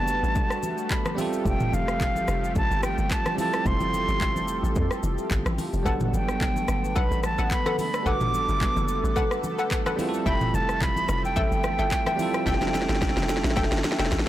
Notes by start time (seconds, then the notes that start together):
Already playing: F#1 G3 A3 B3 D4 F#4 B4 A5
0.08 shaker
0.23 A1, high conga, shaker
0.35 kick, low conga, shaker
0.50 cross-stick, shaker
0.63 high conga, shaker
0.78 shaker
0.90 B5, kick, clap, shaker
1.06 cross-stick, high conga, shaker
1.15 F3 G3 C4 G4 E5, open hi-hat, high conga, shaker
1.20 F4 A4
1.33 shaker
1.46 F1 G5, kick, low conga, shaker
1.60 mid tom, high conga, shaker
1.73 F1 F5, high conga, shaker
1.88 cross-stick, shaker
2.01 kick, clap, low conga, shaker
2.16 high conga, shaker
2.28 F1, cross-stick, shaker
2.43 high conga, shaker
2.55 A1 A5, kick, low conga, shaker
2.71 G1, shaker
2.83 G5, cross-stick, high conga, shaker
2.98 G1, shaker
3.11 A5, kick, clap, shaker
3.26 cross-stick, high conga, shaker
3.35 G3 C4 E4 A4, open hi-hat, high conga, shaker
3.39 F4 A4 A5
3.53 cross-stick, shaker
3.66 F1 C6, kick, low conga, shaker
3.80 high conga, shaker
3.94 high conga, shaker
4.08 G1, shaker
4.21 kick, clap, low conga, shaker
4.36 F1, high conga, shaker
4.48 shaker
4.63 A1, high conga, shaker
4.76 F2, kick, low conga, shaker
4.91 cross-stick, shaker
5.03 F1, high conga, shaker
5.18 shaker
5.31 G1, kick, clap, shaker
5.46 A1, cross-stick, high conga, shaker
5.58 open hi-hat, high conga, shaker
5.73 F1, shaker
5.83 G1 D3 G3 A3 B3 D4 A4 B4 F#5, kick, low conga, shaker
5.87 F#3 A4 A5
6.00 mid tom, high conga, shaker
6.13 G1 G5, high conga, shaker
6.29 cross-stick, shaker
6.41 kick, clap, low conga, shaker
6.56 high conga, shaker
6.68 G1, cross-stick, shaker
6.84 high conga, shaker
6.96 B1 A4 B4 F#5 B5, kick, low conga, shaker
7.11 A1, shaker
7.23 A5, cross-stick, high conga, shaker
7.38 A1 A4 B4 F#5, shaker
7.51 B5, kick, clap, shaker
7.66 A4 B4 F#5, cross-stick, high conga, shaker
7.79 B5, open hi-hat, high conga, shaker
7.94 cross-stick, shaker
8.03 G1 G3 B3 D4 A4 B4 F#5, kick, low conga, shaker
8.07 F#4 A4 D6
8.21 mid tom, high conga, shaker
8.34 high conga, shaker
8.49 G1, shaker
8.61 kick, clap, low conga, shaker
8.76 F#1, high conga, shaker
8.88 shaker
9.04 A1, high conga, shaker
9.16 A4 B4 F#5, kick, low conga, shaker
9.31 cross-stick, shaker
9.44 high conga, shaker
9.58 A4 B4 F#5, shaker
9.71 kick, clap, shaker
9.86 A4 B4 F#5, cross-stick, high conga, shaker
9.96 F3 G3 C4 E4 E5, open hi-hat, high conga, shaker
10.00 F4 G#4
10.09 A4
10.14 shaker
10.26 F1 A4 E5 G5 B5, kick, low conga, shaker
10.41 mid tom, high conga, shaker
10.54 F1 A5, high conga, shaker
10.69 cross-stick, shaker
10.81 B5, kick, clap, low conga, shaker
10.96 high conga, shaker
11.09 F1, cross-stick, shaker
11.24 G5, high conga, shaker
11.36 A1 A4 E5 G5, kick, low conga, shaker
11.52 G1, shaker
11.64 cross-stick, high conga, shaker
11.79 G1 A4 E5 G5, shaker
11.91 kick, clap, shaker
12.06 A4 E5 G5, cross-stick, high conga, shaker
12.16 G3 C4 E4 A4, open hi-hat, high conga, shaker
12.21 F4 A4
12.34 cross-stick, shaker
12.46 F1 A4 E5 G5, kick, snare, low conga, shaker
12.54 snare
12.61 snare, high conga, shaker
12.68 snare
12.74 snare, high conga, shaker
12.82 snare
12.89 G1, snare, shaker
12.95 snare
13.02 kick, snare, low conga, shaker
13.09 snare
13.17 F1, snare, high conga, shaker
13.23 snare
13.29 snare, shaker
13.37 snare
13.44 A1, snare, high conga, shaker
13.50 snare
13.56 F1 A4 E5 G5, kick, snare, low conga, shaker
13.64 snare
13.72 G1, snare, shaker
13.78 snare
13.84 snare, high conga, shaker
13.92 snare
13.99 F1 A4 E5 G5, snare, shaker
14.06 snare
14.12 A1, kick, snare, shaker
14.19 snare